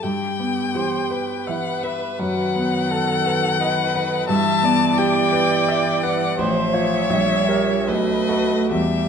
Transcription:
0.02 grand piano G2, viola G4, violin G5
0.40 grand piano B3
0.75 cello E3, grand piano G4, viola C5
1.10 grand piano B4, viola B4
1.47 cello E3, grand piano E5, violin F#5
1.84 grand piano B4, violin E5
2.19 grand piano F#2, cello D#3, violin F#5
2.56 grand piano B3
2.91 grand piano A4, viola A4
3.26 grand piano B4
3.61 viola B4, grand piano D#5
3.95 grand piano B4
4.28 grand piano G2, cello E3, viola E5, violin A5
4.63 grand piano B3, viola D5
4.98 grand piano G4, violin G5
5.32 grand piano B4
5.68 grand piano E5
6.03 grand piano B4, violin F#5
6.38 grand piano A1, cello F3, viola C5, violin E5
6.73 grand piano F4 C5, viola C#5
7.10 grand piano A#1, cello G3
7.48 grand piano G4 A#4
7.87 grand piano B1, cello A3, viola B4, violin D#5
8.28 grand piano F#4 A4
8.71 grand piano E2, cello G3, viola G4, violin E5

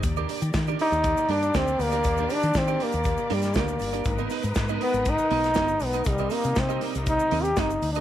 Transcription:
0.03 fingered electric bass D#2, string section D#3 A#3 G4 D5, muted clean electric guitar stroke, kick, closed hi-hat, shaker
0.16 clean electric guitar D4 G4 A#4 D5, shaker
0.29 clean electric guitar D4 G4 A#4 D5, open hi-hat, shaker
0.42 fingered electric bass D#3, muted clean electric guitar stroke, closed hi-hat, shaker
0.53 fingered electric bass D#3, muted clean electric guitar stroke, kick, snare, closed hi-hat, shaker
0.67 clean electric guitar D4 G4 A#4 D5, shaker
0.79 clean electric guitar D4 G4 A#4 D5, trombone D#4, open hi-hat
0.92 fingered electric bass D#2, muted clean electric guitar stroke, closed hi-hat, shaker
1.04 kick, closed hi-hat, shaker
1.17 muted clean electric guitar stroke, shaker
1.29 fingered electric bass G2, clean electric guitar D4 G4 A#4 D5, trombone D4, open hi-hat
1.43 muted clean electric guitar stroke, closed hi-hat, shaker
1.54 fingered electric bass D2, trombone C4, clean electric guitar D4 G4 A#4 D5, kick, snare, closed hi-hat, shaker
1.68 muted clean electric guitar stroke, shaker
1.79 fingered electric bass D2, trombone A#3, muted clean electric guitar stroke, open hi-hat, shaker
1.92 clean electric guitar D4 G4 A#4 D5, closed hi-hat, shaker
2.04 fingered electric bass D#2, muted clean electric guitar stroke, kick, closed hi-hat, shaker
2.17 clean electric guitar D4 G4 A#4 D5, shaker
2.30 clean electric guitar D4 G4 A#4 D5, trombone D4, open hi-hat, shaker
2.42 fingered electric bass D#3, muted clean electric guitar stroke, closed hi-hat, shaker
2.54 fingered electric bass D#3, muted clean electric guitar stroke, kick, snare, closed hi-hat, shaker
2.58 trombone C4
2.67 clean electric guitar D4 G4 A#4 D5, shaker
2.80 trombone A#3, clean electric guitar D4 G4 A#4 D5, open hi-hat
2.92 fingered electric bass D#2, muted clean electric guitar stroke, closed hi-hat, shaker
3.04 kick, closed hi-hat, shaker
3.17 muted clean electric guitar stroke, shaker
3.30 fingered electric bass G2, trombone G3, clean electric guitar D4 G4 A#4 D5, open hi-hat
3.42 muted clean electric guitar stroke, snare, closed hi-hat, shaker
3.54 fingered electric bass D2, clean electric guitar D4 G4 A#4 D5, kick, snare, closed hi-hat, shaker
3.59 trombone A#3
3.68 muted clean electric guitar stroke, shaker
3.79 fingered electric bass G1, muted clean electric guitar stroke, open hi-hat, shaker
3.93 clean electric guitar D4 G4 A#4 D5, closed hi-hat, shaker
4.04 fingered electric bass G#1, string section G#3 D#4 A#4 B4, muted clean electric guitar stroke, kick, closed hi-hat, shaker
4.18 clean electric guitar B3 D#4 A#4 D#5, shaker
4.30 clean electric guitar B3 D#4 A#4 D#5, open hi-hat, shaker
4.43 fingered electric bass G#2, muted clean electric guitar stroke, closed hi-hat, shaker
4.55 fingered electric bass G#2, muted clean electric guitar stroke, kick, snare, closed hi-hat, shaker
4.69 clean electric guitar B3 D#4 A#4 D#5, shaker
4.80 clean electric guitar B3 D#4 A#4 D#5, trombone B3, open hi-hat
4.94 fingered electric bass G#1, muted clean electric guitar stroke, closed hi-hat, shaker
5.05 kick, closed hi-hat, shaker
5.09 trombone D#4
5.18 muted clean electric guitar stroke, shaker
5.30 fingered electric bass B1, clean electric guitar B3 D#4 A#4 D#5, open hi-hat
5.43 snare, closed hi-hat, shaker
5.54 fingered electric bass G1, clean electric guitar B3 D#4 A#4 D#5, kick, snare, closed hi-hat, shaker
5.68 muted clean electric guitar stroke, shaker
5.80 fingered electric bass B1, muted clean electric guitar stroke, open hi-hat, shaker
5.85 trombone B3
5.93 clean electric guitar B3 D#4 A#4 D#5, closed hi-hat, shaker
6.04 fingered electric bass C2, string section C3 G3 A#3, muted clean electric guitar stroke, kick, closed hi-hat, shaker
6.09 trombone G3
6.18 clean electric guitar C4 G4 A#4 D#5, shaker
6.30 trombone A#3, clean electric guitar C4 G4 A#4 D#5, open hi-hat, shaker
6.44 fingered electric bass C3, muted clean electric guitar stroke, closed hi-hat, shaker
6.55 fingered electric bass C3, trombone C4, muted clean electric guitar stroke, kick, snare, closed hi-hat, shaker
6.69 clean electric guitar C4 G4 A#4 D#5, shaker
6.81 clean electric guitar C4 G4 A#4 D#5, open hi-hat
6.95 fingered electric bass C2, muted clean electric guitar stroke, closed hi-hat, shaker
7.06 trombone D#4, kick, closed hi-hat, shaker
7.20 muted clean electric guitar stroke, shaker
7.31 fingered electric bass D#2, clean electric guitar C4 G4 A#4 D#5, open hi-hat
7.43 trombone G4, muted clean electric guitar stroke, closed hi-hat, shaker
7.56 fingered electric bass G1, clean electric guitar C4 G4 A#4 D#5, trombone D#4, kick, snare, closed hi-hat, shaker
7.70 muted clean electric guitar stroke, shaker
7.82 fingered electric bass D2, muted clean electric guitar stroke, open hi-hat, shaker
7.92 trombone D#4, clean electric guitar D#5, closed hi-hat, shaker
7.97 clean electric guitar C4 G4 A#4

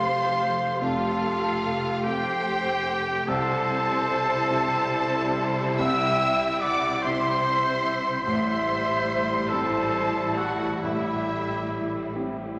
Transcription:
Already playing: grand piano F1 F2 C4 G4 A4, double bass section F1, cello section F2, french horn section A3 G4, viola section A3 G4, oboe C5, violin section C5 C6, flute section F5
0.80 grand piano F1 F2, oboe F4, violin section F4 F5, flute section A4
2.04 grand piano C4 G4 A4, oboe G4, violin section G4 G5, flute section C5
3.28 double bass section C2, grand piano C2 C3, cello section C3, viola section G3 E4, french horn section G3 E4, oboe A4, violin section A4 A5, flute section C5
4.51 grand piano C4 E4 G4
5.79 grand piano C2 C3, oboe E5, violin section E5 E6, flute section G5
6.61 oboe D5, violin section D5 D6, flute section F#5
7.02 grand piano C4 E4 G4, oboe C5, violin section C5 C6, flute section E5
8.24 double bass section A1, grand piano A1 A2, cello section A2, french horn section G3 E4, viola section G3 E4, oboe C5, violin section C5 C6, flute section E5
9.49 grand piano C4 E4, oboe A4, violin section A4 A5, flute section C5
9.53 grand piano G3
10.36 oboe F#4, violin section F#4 F#5, flute section A4
10.80 grand piano A1 A2, oboe E4, violin section E4 E5, flute section G4
12.15 grand piano C4 E4 G4

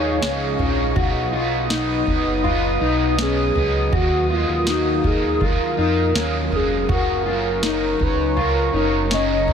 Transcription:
Already playing: analog synth bass D#2, overdriven electric guitar F3 G#3 D#4, clean electric guitar D#4, ambient pad G#4 D#5 F5 C#6, soft synth lead C#5
0.21 analog synth bass C#2, overdriven electric guitar C#3 F3 G#3, clean electric guitar C#4, snare
0.25 overdriven electric guitar D#4
0.58 analog synth bass A#1, overdriven electric guitar G#3 D#4, floor tom
0.64 overdriven electric guitar F3
0.95 analog synth bass B1, overdriven electric guitar B2 F#3 B3, clean electric guitar F#4, ambient pad B4 D#5 D#6, kick, floor tom
0.99 overdriven electric guitar D#4
1.32 overdriven electric guitar B3 D#4, clean electric guitar F4
1.38 overdriven electric guitar F#3
1.69 overdriven electric guitar B2 F#3 B3 D#4, clean electric guitar D#4, snare
2.06 analog synth bass F#1, overdriven electric guitar B3 D#4, kick, floor tom
2.12 overdriven electric guitar F#3
2.43 overdriven electric guitar B2 F#3, clean electric guitar F4, floor tom
2.47 overdriven electric guitar B3 D#4
2.81 analog synth bass B1, overdriven electric guitar B3 D#4, clean electric guitar D#4
2.86 overdriven electric guitar F#3
3.18 overdriven electric guitar B2 F#3 B3, clean electric guitar C#4, soft synth lead G#4, snare
3.23 overdriven electric guitar D#4
3.55 analog synth bass C#2, overdriven electric guitar B3 D#4, floor tom
3.61 overdriven electric guitar F#3
3.92 analog synth bass D#2, overdriven electric guitar D#3 F#3 A#3, clean electric guitar F#4, soft synth lead F#4, ambient pad A#4 F5, kick, floor tom
4.29 overdriven electric guitar A#3 F4, clean electric guitar F4, soft synth lead F4
4.35 overdriven electric guitar F#3
4.49 analog synth bass D#2
4.67 overdriven electric guitar D#3 F#3 A#3, clean electric guitar D#4, soft synth lead F#4, snare
5.03 analog synth bass D#2, overdriven electric guitar A#3 F4, soft synth lead G#4, kick, floor tom
5.09 overdriven electric guitar F#3
5.40 overdriven electric guitar D#3 F#3 A#3, clean electric guitar F4, kick, floor tom
5.45 overdriven electric guitar F4, soft synth lead A#4
5.77 analog synth bass F2, overdriven electric guitar A#3 F4, clean electric guitar D#4
6.15 analog synth bass D#2, overdriven electric guitar D#3 F#3 A#3 F4, clean electric guitar C#4, snare
6.51 analog synth bass F1, overdriven electric guitar A#3 F4, floor tom
6.56 overdriven electric guitar F#3, soft synth lead G#4
6.89 analog synth bass F#1, overdriven electric guitar F#2 C#3 F#3 A#3, clean electric guitar F#4, ambient pad C#5 A#5 C#6, kick, floor tom
6.93 overdriven electric guitar C#4, soft synth lead A#4
7.26 overdriven electric guitar A#3 C#4, clean electric guitar F4
7.31 overdriven electric guitar F#3
7.62 overdriven electric guitar F#2 C#3 F#3 A#3 C#4, clean electric guitar D#4, snare
7.99 analog synth bass C#2, overdriven electric guitar C#4, kick, floor tom
8.04 overdriven electric guitar F#3, soft synth lead B4
8.36 overdriven electric guitar C#3 F#3 A#3, clean electric guitar F4, floor tom
8.41 overdriven electric guitar C#4, soft synth lead A#4
8.73 analog synth bass F#1, overdriven electric guitar A#3 C#4, clean electric guitar D#4
8.78 overdriven electric guitar F#3
9.11 overdriven electric guitar F#2 C#3 F#3 A#3 C#4, clean electric guitar C#4, soft synth lead D#5, snare
9.47 analog synth bass B1, overdriven electric guitar C#4, floor tom

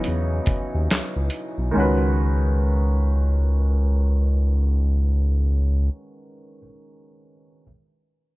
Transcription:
Already playing: grand piano C#3 E3 F#3 B3 C#4 D#4
0.04 analog synth bass E2, closed hi-hat
0.46 kick, closed hi-hat
0.75 analog synth bass D#2
0.91 analog synth bass C#2, snare, clap, closed hi-hat
1.16 analog synth bass C#2
1.30 closed hi-hat
1.58 analog synth bass B1
1.71 grand piano D#3 G#3
1.76 analog synth bass C#2, grand piano C#4 F#4
1.80 grand piano B4

